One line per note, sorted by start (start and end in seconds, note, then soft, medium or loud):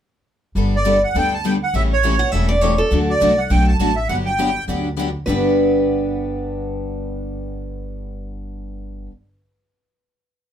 0.55 1.03 G1 medium
0.55 0.75 G3 medium
0.55 0.75 B3 medium
0.55 0.75 D4 medium
0.55 0.75 A4 medium
0.76 1.02 D5 medium
0.85 0.96 G3 medium
0.85 0.96 B3 medium
0.85 0.96 D4 medium
0.85 0.96 A4 medium
1.04 1.16 F#5 medium
1.14 1.62 D2 medium
1.14 1.34 G3 medium
1.14 1.34 B3 medium
1.14 1.34 D4 medium
1.14 1.34 A4 medium
1.14 1.34 G5 loud
1.34 1.45 A5 medium
1.45 1.55 G3 medium
1.45 1.55 B3 medium
1.45 1.55 D4 medium
1.45 1.56 A4 medium
1.45 1.53 G5 medium
1.63 1.74 F#5 medium
1.73 2.21 A1 medium
1.73 1.93 C#3 medium
1.73 1.93 E3 medium
1.73 1.93 G3 medium
1.73 1.93 A3 medium
1.73 1.93 C#4 medium
1.73 1.93 E4 medium
1.73 1.94 G4 medium
1.73 1.93 A4 medium
1.73 1.83 E5 medium
1.93 2.31 C#5 medium
2.03 2.14 C#3 medium
2.03 2.14 E3 medium
2.03 2.14 G3 medium
2.03 2.14 A3 medium
2.03 2.14 C#4 medium
2.03 2.14 E4 medium
2.03 2.15 G4 medium
2.03 2.14 A4 medium
2.19 2.32 F#5 medium
2.32 2.80 E1 medium
2.32 2.52 C#3 medium
2.32 2.52 E3 medium
2.32 2.52 G3 medium
2.32 2.53 A3 medium
2.32 2.53 C#4 medium
2.32 2.52 E4 medium
2.32 2.53 G4 medium
2.32 2.52 A4 medium
2.32 2.48 E5 medium
2.49 2.61 D5 medium
2.61 2.73 C#3 medium
2.61 2.73 E3 medium
2.61 2.72 G3 medium
2.61 2.73 A3 medium
2.61 2.73 C#4 medium
2.61 2.73 E4 medium
2.61 2.73 G4 medium
2.61 2.73 A4 medium
2.61 2.79 C#5 medium
2.78 2.98 A4 medium
2.91 3.15 D2 medium
2.91 3.11 D3 medium
2.91 3.11 F#3 medium
2.91 3.11 A3 medium
2.91 3.11 D4 medium
2.91 3.12 F#4 medium
2.91 3.11 A4 medium
3.10 3.40 D5 medium
3.21 3.46 C2 medium
3.21 3.32 D3 medium
3.21 3.32 F#3 medium
3.21 3.32 A3 medium
3.21 3.32 D4 loud
3.21 3.32 F#4 loud
3.21 3.32 A4 loud
3.38 3.51 F#5 medium
3.50 3.75 B1 medium
3.50 3.70 D3 medium
3.50 3.70 F#3 medium
3.50 3.70 A3 medium
3.50 3.70 D4 medium
3.50 3.70 F#4 medium
3.50 3.70 A4 medium
3.50 3.67 G5 loud
3.68 3.77 A5 medium
3.79 4.05 A1 medium
3.79 3.90 D3 medium
3.79 3.91 F#3 medium
3.79 3.91 A3 medium
3.79 3.91 D4 medium
3.79 3.91 F#4 medium
3.79 3.91 A4 medium
3.79 3.95 A5 medium
3.96 4.08 E5 medium
4.09 4.56 G1 medium
4.09 4.28 D3 medium
4.09 4.28 F#3 medium
4.09 4.28 B3 medium
4.09 4.29 D4 medium
4.09 4.29 G4 medium
4.09 4.16 F#5 medium
4.26 4.65 G5 medium
4.38 4.49 D3 medium
4.38 4.49 F#3 medium
4.38 4.49 B3 medium
4.38 4.49 D4 medium
4.38 4.49 G4 medium
4.68 5.15 D2 medium
4.68 4.87 D3 medium
4.68 4.87 F#3 medium
4.68 4.87 B3 medium
4.68 4.87 D4 medium
4.68 4.87 G4 medium
4.97 5.07 D3 medium
4.97 5.07 F#3 medium
4.97 5.07 B3 medium
4.97 5.08 D4 medium
4.97 5.08 G4 medium
5.26 9.06 G1 medium
5.26 9.10 G2 medium
5.26 9.10 D3 medium
5.26 9.10 B3 medium
5.26 9.11 D4 medium
5.26 9.11 G4 medium
5.26 9.06 B4 medium